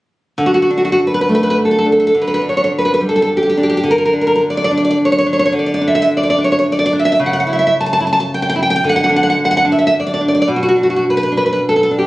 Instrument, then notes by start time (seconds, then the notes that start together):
nylon-string guitar
0.38 D3
0.46 F#4
0.54 F#4
0.62 F#4
0.70 D4
0.78 F#4
0.85 F#4
0.92 F#4
1.07 B4
1.14 B4
1.21 B4
1.29 A3
1.35 B4
1.43 B4
1.50 B4
1.65 A4
1.71 A4
1.79 A4
1.85 D4
1.92 A4
2.00 A4
2.07 A4
2.15 D3
2.22 B4
2.27 B4
2.34 B4
2.42 D4
2.49 C#5
2.57 C#5
2.64 C#5
2.78 B4
2.85 B4
2.94 B4
3.01 G3
3.09 A4
3.16 A4
3.22 A4
3.37 G4
3.43 G4
3.49 G4
3.57 D4
3.63 G4
3.69 G4
3.77 G4
3.83 D3
3.91 A#4
3.98 A#4
4.05 A#4
4.13 D4
4.21 A#4
4.27 A#4
4.36 A#4
4.50 D5
4.57 D5
4.64 D5
4.71 D4
4.78 D5
4.85 D5
4.91 D5
5.05 C#5
5.12 C#5
5.18 C#5
5.26 D4
5.33 C#5
5.39 C#5
5.46 C#5
5.52 D3
5.59 D5
5.66 D5
5.74 D5
5.81 D4
5.88 E5
5.95 E5
6.02 E5
6.17 D5
6.23 D5
6.30 D5
6.38 D4
6.44 C#5
6.52 C#5
6.59 C#5
6.72 D5
6.79 D5
6.86 D5
6.93 D4
6.99 E5
7.05 E5
7.12 E5
7.20 C#3
7.26 F#5
7.33 F#5
7.40 F#5
7.47 E4
7.53 E5
7.59 E5
7.67 E5
7.81 A5
7.86 A5
7.93 A5
8.00 E4
8.07 A5
8.13 A5
8.20 A5
8.34 G5
8.42 G5
8.49 G5
8.56 E4
8.63 G5
8.70 G5
8.76 G5
8.84 D3
8.89 F#5
8.96 F#5
9.04 F#5
9.10 D4
9.16 F#5
9.23 F#5
9.30 F#5
9.45 F#5
9.51 F#5
9.57 F#5
9.65 D4
9.72 E5
9.79 E5
9.87 E5
10.00 D5
10.07 D5
10.14 D5
10.21 D4
10.28 D5
10.35 D5
10.42 D5
10.48 B2
10.56 F#4
10.63 F#4
10.69 F#4
10.76 D4
10.83 F#4
10.90 F#4
10.96 F#4
11.10 B4
11.17 B4
11.23 B4
11.32 D4
11.37 B4
11.46 B4
11.53 B4
11.69 A4
11.76 A4
11.83 A4
11.91 D4
11.99 G4